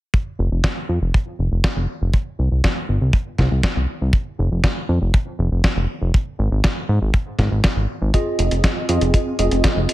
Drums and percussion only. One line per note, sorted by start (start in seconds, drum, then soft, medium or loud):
0.14 kick loud
0.64 kick loud
0.64 snare loud
1.14 kick loud
1.64 kick loud
1.64 snare loud
2.14 kick loud
2.64 kick loud
2.64 snare loud
3.13 kick loud
3.38 kick medium
3.38 snare medium
3.63 kick loud
3.63 snare loud
4.13 kick loud
4.64 kick loud
4.64 snare loud
5.14 kick loud
5.64 kick loud
5.64 snare loud
6.14 kick loud
6.64 kick loud
6.64 snare loud
7.14 kick loud
7.39 kick medium
7.39 snare medium
7.64 kick loud
7.64 snare loud
8.14 kick loud
8.14 closed hi-hat medium
8.39 closed hi-hat medium
8.51 closed hi-hat soft
8.64 kick loud
8.64 snare loud
8.64 closed hi-hat medium
8.89 closed hi-hat medium
9.01 closed hi-hat soft
9.14 kick loud
9.14 closed hi-hat medium
9.39 closed hi-hat medium
9.51 closed hi-hat soft
9.64 kick loud
9.64 snare loud
9.64 closed hi-hat medium
9.89 closed hi-hat medium